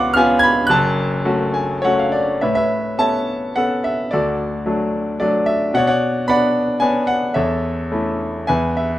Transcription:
Already playing: C#2 B3 C#4 F4 D5 F5 F#5 B5 C#6 D6
0.14 B3 C#4 F4 G#5 F6
0.39 B5 G#6
0.67 F#1 F#2 A5 F#6
1.25 A3 C#4 F#4
1.54 G#5
1.82 A3 C#4 F#4 C#5 F#5
1.99 F5
2.12 D5
2.41 A2 B4 C#5 E5
2.55 B4 C#5 E5
2.98 B3 C#4 A4 C#5 E5 A5
3.56 B3 C#4 A4 F#5
3.84 E5
4.11 D2 F#4 A4 D5
4.66 F#3 A3 D4
5.20 F#3 A3 D4 D5
5.46 E5
5.74 B2 C#5 D5 F#5
5.87 C#5 D5 F#5
6.28 B3 D4 D5 F#5 B5
6.80 B3 C#4 D4 G#5
7.07 F#5
7.34 E2 A4 C#5 E5
7.92 A3 C#4 E4
8.47 E2 B4 E5 G#5
8.77 E5

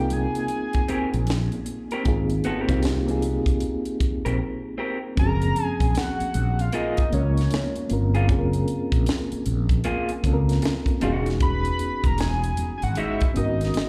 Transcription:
Already playing: C2 A#3 C4 D#4 A#4 G5
0.00 F4 G#4
0.10 G#5, closed hi-hat, high conga, low conga
0.35 closed hi-hat
0.48 closed hi-hat, muted conga
0.73 kick, closed hi-hat, muted conga
0.88 C4 G4 A#4, muted fretless electric bass stroke, closed hi-hat
1.14 A#1, closed hi-hat
1.27 snare, closed hi-hat, muted conga, high conga
1.52 closed hi-hat, muted conga, high conga
1.66 closed hi-hat, high conga
1.91 C4 G4 A#4, closed hi-hat
2.04 G#1 A#3 C4 D#4 F4, kick, closed hi-hat, muted conga, low conga
2.08 G#4
2.30 closed hi-hat, muted conga
2.44 B3 F#4 A4, closed hi-hat
2.60 C4 G4 A#4
2.68 C2 A#3 C4 D#4 F4, kick, closed hi-hat
2.72 G4
2.83 snare, closed hi-hat, high conga
3.07 A#3 C4 D#4 F4, closed hi-hat
3.11 G#4
3.22 closed hi-hat, high conga, low conga
3.46 kick, closed hi-hat
3.60 closed hi-hat, muted conga
3.85 closed hi-hat, muted conga
4.00 muted fretless electric bass stroke, kick, closed hi-hat
4.25 A#1 C4 G4 A#4, closed hi-hat
4.78 C4 G4 A#4
5.16 F#1 F3 A#3 C4 C#4 A#5, kick, closed hi-hat, low conga
5.20 F#4
5.27 G#4
5.42 closed hi-hat, muted conga
5.56 closed hi-hat
5.64 G#5
5.80 A#1 G#5, kick, closed hi-hat
5.94 F#5, snare, closed hi-hat, high conga
6.20 muted fretless electric bass stroke, closed hi-hat, muted conga
6.34 A#1, closed hi-hat, high conga, low conga
6.59 F5, closed hi-hat
6.72 A#3 F4 G#4 D#5, closed hi-hat
6.97 kick, closed hi-hat
7.10 C#2 G#3 A#3 C#4 F4 C#5, closed hi-hat
7.15 A#4
7.37 snare, closed hi-hat
7.51 snare, closed hi-hat, high conga
7.75 closed hi-hat, muted conga, high conga
7.89 G1 A#3 C4 C#4 F4, closed hi-hat, high conga
7.93 A#4
8.15 A#3 F4 G#4, closed hi-hat
8.28 F#1 A#3 C4 C#4 F4, kick, closed hi-hat, low conga
8.32 G#4
8.38 A#4
8.53 closed hi-hat, muted conga
8.68 closed hi-hat
8.92 A#1, kick, closed hi-hat
9.06 snare, closed hi-hat, high conga
9.32 muted fretless electric bass stroke, closed hi-hat, muted conga
9.46 A#1, closed hi-hat, high conga, low conga
9.69 kick, closed hi-hat
9.84 A#3 F4 G#4, closed hi-hat, muted conga
10.08 closed hi-hat, muted conga
10.23 C#2 A#3 C4 C#4 F4, kick, closed hi-hat
10.27 A4
10.33 A#4
10.49 snare, closed hi-hat
10.62 muted clean electric guitar stroke, snare, closed hi-hat, muted conga, high conga
10.86 kick, closed hi-hat, high conga
11.00 E1 G3 B3 C#4 D#4 F#4, closed hi-hat, high conga
11.05 G#4
11.13 G#3
11.26 snare, closed hi-hat
11.40 B5, kick, closed hi-hat, muted conga, low conga
11.65 closed hi-hat, muted conga
11.79 closed hi-hat
12.04 E1 A#5, kick, closed hi-hat
12.18 G#5, snare, closed hi-hat, muted conga, high conga
12.43 closed hi-hat, muted conga
12.57 muted fretless electric bass stroke, closed hi-hat, high conga, low conga
12.78 G#5
12.82 G#1 F#5, closed hi-hat
12.95 G#3 D#4 F#4 E5, closed hi-hat, muted conga
13.21 kick, closed hi-hat
13.34 G#1 B3 C#4 D#4 F#4 D#5, closed hi-hat
13.38 A#4
13.61 snare, closed hi-hat
13.74 snare, closed hi-hat, high conga

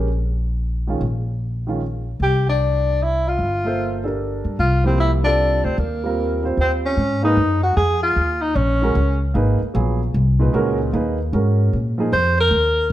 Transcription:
Already playing: A#1
0.87 D#3 G#3 C#4 F4
1.01 A#1
1.67 D#3 G#3 C#4 F4
2.20 C2 G4
2.49 D4
3.03 E4
3.28 F4
3.39 G1
3.64 A#3 A4 C5 E5
4.04 D4 G4 A4 A#4
4.44 G2
4.59 C2 F4
4.84 F3 A#3 C4 E4 G4
5.00 E4
5.24 G3 C4 D4 F4 A4
5.64 D2 C4
5.78 D#2 A#3
6.04 G3 C4 F4 A#4
6.43 G3 C4 F4 C5
6.57 D#2 C4
6.86 C#4
6.97 G#2
7.22 A#3 D#4 G#4 B4
7.37 F#2
7.63 F#4
7.76 F2 G#4
8.03 F4
8.16 D#2
8.42 D#4
8.55 A#1 C#4
8.82 G#3 C#4 F#4 A#4
8.95 C#2
9.34 G#1 A#3 D#4 G#4 B4
9.61 muted upright bass stroke
9.74 A#1 F#3 B3 F4 G#4
10.14 C2
10.39 A#2 D#4 G#4 B4
10.53 C#2 G#3 C#4 F#4 A#4
10.93 D#2 A#3 D#4 G#4 B4
11.32 G#2 G#3 C#4 F#4 A#4
11.73 A#2
11.98 F3 A#3 D#4 G#4
12.12 F2 C5
12.40 A#4
12.51 D#2

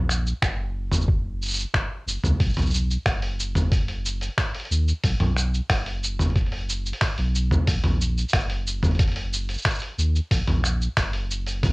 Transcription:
Already playing: A#1
0.09 finger snap, cabasa
0.27 cabasa
0.42 F#1, finger snap, kick, cabasa
0.92 mid tom, cabasa
1.01 cabasa
1.08 kick
1.42 cabasa
1.45 cabasa
1.48 cabasa
1.50 cabasa
1.53 cabasa
1.56 cabasa
1.59 cabasa
1.74 F#1, finger snap, kick, cabasa
2.07 F#1, cabasa
2.23 C#2, mid tom, cabasa
2.40 B1, kick, open hi-hat, cabasa
2.45 cabasa
2.49 cabasa
2.53 B1, mid tom, open hi-hat, cabasa
2.58 cabasa
2.62 cabasa
2.66 cabasa
2.70 cabasa
2.74 cabasa
2.91 cabasa
3.06 F#1, finger snap, kick, open hi-hat, cabasa
3.22 open hi-hat
3.40 cabasa
3.55 mid tom, open hi-hat, cabasa
3.72 kick, open hi-hat, cabasa
3.88 open hi-hat
4.06 cabasa
4.21 open hi-hat, cabasa
4.38 finger snap, kick, open hi-hat, cabasa
4.55 open hi-hat
4.60 open hi-hat
4.65 open hi-hat
4.71 D#2, cabasa
4.88 cabasa
5.04 B1, kick, open hi-hat, cabasa
5.20 B1, mid tom, open hi-hat
5.36 finger snap, cabasa
5.54 cabasa
5.69 F#1, finger snap, kick, open hi-hat, cabasa
5.86 open hi-hat
6.04 cabasa
6.19 mid tom, open hi-hat, cabasa
6.25 open hi-hat
6.30 open hi-hat
6.35 kick, open hi-hat, cabasa
6.41 open hi-hat
6.46 open hi-hat
6.52 open hi-hat
6.69 cabasa
6.86 cabasa
6.93 open hi-hat
7.01 finger snap, kick, open hi-hat, cabasa
7.18 B1, open hi-hat
7.35 cabasa
7.51 mid tom, cabasa
7.67 A#1, kick, open hi-hat, cabasa
7.84 A#1, mid tom, open hi-hat
8.01 cabasa
8.18 cabasa
8.29 cabasa
8.33 F#1, finger snap, kick, open hi-hat, cabasa
8.40 cabasa
8.50 open hi-hat
8.67 cabasa
8.83 mid tom, open hi-hat, cabasa
8.87 open hi-hat
8.91 open hi-hat
8.95 open hi-hat
8.99 kick, open hi-hat, cabasa
9.03 open hi-hat
9.08 open hi-hat
9.12 open hi-hat
9.16 open hi-hat
9.33 cabasa
9.49 open hi-hat, cabasa
9.54 cabasa
9.58 cabasa
9.62 finger snap, kick, open hi-hat, cabasa
9.66 cabasa
9.70 cabasa
9.75 cabasa
9.79 open hi-hat, cabasa
9.98 D#2, cabasa
10.16 cabasa
10.31 A#1, kick, open hi-hat, cabasa
10.47 A#1, mid tom, open hi-hat
10.64 finger snap, cabasa
10.81 cabasa
10.97 F#1, finger snap, kick, open hi-hat, cabasa
11.13 open hi-hat
11.31 cabasa
11.46 open hi-hat, cabasa
11.63 kick, mid tom, open hi-hat, cabasa

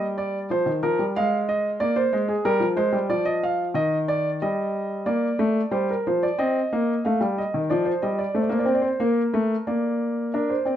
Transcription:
Already playing: G3
0.18 D5
0.50 F3 C5
0.66 D#3
0.83 F3 A#4
0.99 G3
1.16 G#3 F5
1.49 D#5
1.80 A#3 D5
1.96 C5
2.13 G#3
2.28 G#4
2.45 G3 A#4
2.60 F3
2.76 G#3 C5
2.92 G3
3.09 F3 D5
3.25 D#5
3.43 F5
3.74 D#3 D#5
4.08 D5
4.42 G3 D#5
5.06 A#3 D5
5.39 A3
5.71 G3 C5
5.91 A#4
6.07 F3 C5
6.23 D5
6.38 C4 D#5
6.73 A#3
7.05 A3 F5
7.21 G3
7.38 D#5
7.54 D#3
7.70 F3 D5
7.85 C5
8.02 G3 D#5
8.19 D5
8.34 A3 C5
8.42 D5
8.49 A#3 C5
8.59 D5
8.64 C4 C5
8.75 D5
8.82 C5
9.00 A#3 A#4
9.34 A3
9.67 A#3 D5
10.34 D4 A#4
10.50 C5
10.65 C4 D5

